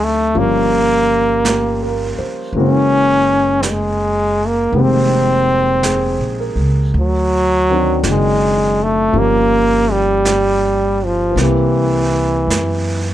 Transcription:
Already playing: D2 D3 F#3 C4 D#4
0.04 A3
0.34 G1 F3 G3 A#3 C#4 F4, brush sweep
0.39 A#3
1.45 G4, brush sweep, snare, hi-hat pedal
1.82 A#4
2.19 C5, muted upright bass stroke
2.53 F#1 E3 G#3 A#3 C#4, brush sweep
2.57 C#4 F#4
3.62 G3, brush sweep, snare, hi-hat pedal
3.71 G#3
4.47 A#3
4.72 F1 D#3 G#3 A#3 B3, brush sweep
4.76 C4 G4
4.82 C4
5.83 G#4, brush sweep, snare, hi-hat pedal
6.19 A#1
6.40 A#4
6.56 C#2
6.93 D2, brush sweep
7.00 F#3
7.69 D#3 F#3 C4 D4
7.74 F#4
8.03 F#1, brush sweep, snare, hi-hat pedal
8.10 G#3
8.83 A3
9.12 G1 F3 G3 A#3, brush sweep
9.16 A#3 C#4 G4
9.92 G3
10.25 brush sweep, snare, hi-hat pedal
11.05 F3
11.31 E3
11.36 C2 A#3 C4, brush sweep, snare
11.41 E3 G4
12.48 F#2, brush sweep, snare, hi-hat pedal

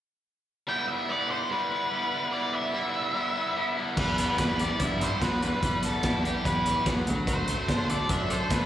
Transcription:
0.67 G3 B3 E4 G5
0.88 E5
1.08 G3 B3 E4 D5
1.31 C5
1.49 G3 B3 E4 B4
1.70 B3 E4
1.91 G3 B3 E4
2.11 B3 E4
2.31 G3 B3 E4 D5
2.53 E5
2.73 G3 B3 E4
3.14 G3 B3 E4
3.35 B3 E4
3.56 G3 B3 E4
3.77 G3 B3 E4
3.97 E2 G3 B4, kick, crash
4.18 B3, closed hi-hat
4.38 E2 E4, kick, snare, closed hi-hat
4.59 G4 D5, closed hi-hat
4.79 G2 E4 E5, kick, closed hi-hat
5.00 G4 C5, closed hi-hat
5.21 E2 B3 B4, kick, snare, closed hi-hat
5.42 G3 B4, closed hi-hat
5.62 E2 G3, kick, closed hi-hat
5.83 B3 A4, closed hi-hat
6.03 E2 E4, kick, snare, closed hi-hat
6.25 G4, closed hi-hat
6.45 E2 E4 B4, kick, closed hi-hat
6.66 G4, closed hi-hat
6.86 E2 B3, kick, snare, closed hi-hat
7.07 D2 F#3, closed hi-hat
7.27 F#3 C5, kick, closed hi-hat
7.47 A3, closed hi-hat
7.68 D2 D4, kick, snare, closed hi-hat
7.89 A4 D5, closed hi-hat
8.09 F#2 D4 E5, kick, closed hi-hat
8.30 A4 C5, closed hi-hat
8.50 D2 A3 B4, kick, snare, closed hi-hat

